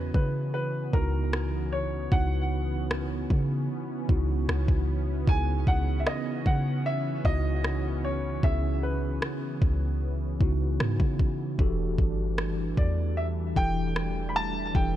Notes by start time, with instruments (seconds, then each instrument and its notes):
Already playing: 808-style bass E2, tine electric piano C#3 B3 C#4 E4 F#4, analog synth pad E3 B3 C#4, grand piano B4
0.14 808-style bass C#3, grand piano B4, kick
0.54 grand piano B4
0.92 808-style bass C#2, tine electric piano C#3 B3 D#4 E4 F#4, grand piano A#4, kick
1.33 cross-stick
1.73 grand piano C#5
2.11 808-style bass C#2, tine electric piano C#3 B3 D#4 E4 F#4, grand piano F#5, kick
2.91 cross-stick
3.30 808-style bass C#3, kick
4.08 808-style bass C#2, tine electric piano C#3 B3 D#4 E4 F#4, kick
4.48 808-style bass C#2, cross-stick
4.68 808-style bass C#2, kick
5.26 808-style bass C#2, tine electric piano C#3 B3 D#4 E4 G#4, grand piano G#5, kick
5.67 808-style bass C#2, grand piano F#5, kick
6.00 grand piano E5
6.07 grand piano D#5, cross-stick
6.46 808-style bass C#3, grand piano F#5, kick
6.86 grand piano E5
7.24 808-style bass C#2, tine electric piano C#3 B3 D#4 E4 F#4, grand piano D#5, kick
7.64 cross-stick
8.05 grand piano C#5
8.42 808-style bass C#2, tine electric piano C#3 B3 C#4 E4 G#4, grand piano E5, kick
8.83 grand piano B4
9.22 cross-stick
9.62 808-style bass C#2, kick
10.40 808-style bass C#2, tine electric piano C#3 B3 D#4 E4 F#4, kick
10.80 808-style bass G#2, cross-stick
11.00 808-style bass C#3, kick
11.19 kick
11.58 808-style bass E1, tine electric piano E3 D4 F#4 G4 A4, analog synth pad G3 A3 D4, kick
11.98 808-style bass G1, kick
12.38 cross-stick
12.77 808-style bass E2, grand piano D5, kick
13.17 grand piano E5
13.55 808-style bass E1, tine electric piano E3 D4 E4 G4 A4, grand piano G5, kick
13.96 cross-stick
14.29 grand piano B5
14.36 grand piano A5
14.74 808-style bass E1, tine electric piano E3 D4 E4 G4 A4, grand piano G5, kick